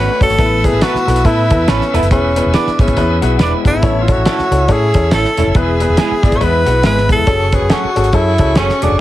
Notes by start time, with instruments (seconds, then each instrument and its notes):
Already playing: clean electric guitar A3 F#4 C#5, grand piano C#4 F#4 B4 C#5, tenor saxophone B4, tonewheel organ B4 C#5 F#5 C#6
0.21 fingered electric bass F#1, grand piano C#4 F#4 B4 C#5, tenor saxophone A4, kick, closed hi-hat
0.30 fingered electric bass G#1, closed hi-hat
0.38 fingered electric bass A1, grand piano A2 B3 E4 A4 B4, tonewheel organ E5 A5 E6, kick, closed hi-hat
0.64 grand piano B3 E4 A4 B4, tenor saxophone G#4, kick, closed hi-hat
0.72 fingered electric bass A1
0.81 clean electric guitar B3 E4 A4 B4, grand piano B3 E4 A4 B4, tenor saxophone F#4, snare, closed hi-hat
0.94 muted fingered electric bass stroke, snare
1.07 fingered electric bass B1, grand piano B3 E4 A4 B4, closed hi-hat
1.16 closed hi-hat
1.25 fingered electric bass A2, grand piano B3 E4 A4 B4, tenor saxophone E4, kick, closed hi-hat
1.50 fingered electric bass E2, grand piano B3 E4 A4 B4, kick, closed hi-hat
1.67 fingered electric bass A1, clean electric guitar B3 E4 A4 B4, grand piano B3 E4 A4 B4, tenor saxophone C#4, snare, closed hi-hat
1.81 snare
1.93 fingered electric bass E1, clean electric guitar B3 E4 A4 B4, grand piano B3 E4 A4 B4, tenor saxophone E4, closed hi-hat
2.02 fingered electric bass F#1, closed hi-hat
2.11 fingered electric bass E1, grand piano E3 B3 E4 G#4 B4, tenor saxophone C#4, tonewheel organ E5 G#5 E6, kick, closed hi-hat
2.36 grand piano B3 E4 G#4 B4, closed hi-hat
2.46 fingered electric bass E1
2.54 clean electric guitar B3 E4 G#4 B4, grand piano B3 E4 G#4 B4, tenor saxophone D4, snare, closed hi-hat
2.67 muted fingered electric bass stroke, snare
2.79 fingered electric bass G#1, grand piano B3 E4 G#4 B4, tenor saxophone C#4, kick, closed hi-hat
2.88 kick, closed hi-hat
2.97 fingered electric bass E2, grand piano B3 E4 G#4 B4, kick, closed hi-hat
3.22 fingered electric bass B1, grand piano B3 E4 G#4 B4, clean electric guitar F#4, closed hi-hat
3.39 clean electric guitar G#3 B3 E4 G#4 B4, grand piano B3 E4 G#4 B4, tenor saxophone D4, snare, closed hi-hat
3.64 fingered electric bass F#1, clean electric guitar D3 B3, grand piano B3 E4 G#4 B4, tenor saxophone E4, kick, closed hi-hat
3.74 fingered electric bass G#1
3.82 fingered electric bass A1, grand piano A2 C#4 E4 A4 C#5, tonewheel organ C#5, kick, closed hi-hat
4.02 tenor saxophone F4
4.08 grand piano C#4 E4 A4 C#5, tenor saxophone F#4, kick, closed hi-hat
4.17 fingered electric bass A1
4.25 clean electric guitar A3 C#4 E4 A4, grand piano C#4 E4 A4 C#5, snare, closed hi-hat
4.38 muted fingered electric bass stroke, snare
4.51 fingered electric bass C#2, grand piano C#4 E4 A4 C#5, closed hi-hat
4.68 fingered electric bass A2, grand piano C#4 E4 A4 C#5, tenor saxophone G#4, kick, closed hi-hat
4.94 fingered electric bass E2, grand piano C#4 E4 A4 C#5, kick, closed hi-hat
5.11 fingered electric bass A1, clean electric guitar A3 C#4 E4 A4, grand piano C#4 E4 C#5, tenor saxophone A4, snare, closed hi-hat
5.24 snare
5.37 fingered electric bass E1, clean electric guitar A3 C#4 E4 A4, grand piano C#4 E4 A4 C#5, closed hi-hat
5.47 fingered electric bass F#1, tenor saxophone A4
5.55 fingered electric bass E1, grand piano E3 B3 E4 G#4 B4, tenor saxophone G#4, tonewheel organ B4 G#5, kick, closed hi-hat
5.80 grand piano B3 E4 G#4 B4, closed hi-hat
5.89 fingered electric bass E1
5.97 clean electric guitar G#3 B3 E4 G#4, grand piano B3 E4 G#4 B4, snare, closed hi-hat
6.11 muted fingered electric bass stroke
6.23 fingered electric bass G#1, grand piano B3 E4 G#4 D5, kick, closed hi-hat
6.32 kick, closed hi-hat
6.37 fingered electric bass E2, grand piano B3 E4 G#4 B4, clean electric guitar E4, tenor saxophone C#5
6.41 clean electric guitar G#3, tenor saxophone B4, kick, closed hi-hat
6.66 fingered electric bass B1, grand piano B3 E4 G#4 B4, clean electric guitar F#4, closed hi-hat
6.83 fingered electric bass G#1, clean electric guitar G#3 B3 E4 G#4, grand piano B3 E4 G#4 B4, tenor saxophone B4, snare, closed hi-hat
6.97 snare
7.09 grand piano B3 E4 G#4 B4, tenor saxophone A4, kick, closed hi-hat
7.18 fingered electric bass E1
7.27 fingered electric bass F#1, grand piano C#4 F#4 G#4 A4, tonewheel organ A4 F#5 C#6, kick, closed hi-hat
7.52 grand piano C#4 F#4 G#4 B4, tenor saxophone G#4, kick, closed hi-hat
7.62 fingered electric bass F#1
7.70 clean electric guitar F#3 A3 C#4 G#4, grand piano C#4 F#4 G#4 A4, tenor saxophone F#4, snare, closed hi-hat
7.84 muted fingered electric bass stroke
7.95 fingered electric bass G#1, grand piano C#4 F#4 G#4 A4, closed hi-hat
8.04 closed hi-hat
8.13 fingered electric bass F#2, grand piano C#4 F#4 G#4 A4, tenor saxophone E4, kick, closed hi-hat
8.38 fingered electric bass C#2, grand piano C#4 F#4 G#4 A4, kick, closed hi-hat
8.55 fingered electric bass F#1, clean electric guitar F#3 A3 C#4 G#4, tenor saxophone C#4, grand piano G#4 A4, snare, closed hi-hat
8.69 snare
8.82 fingered electric bass E1, clean electric guitar F#3 A3 C#4 G#4, grand piano C#4 F#4 G#4 A4, tenor saxophone D4, closed hi-hat
8.91 fingered electric bass F#1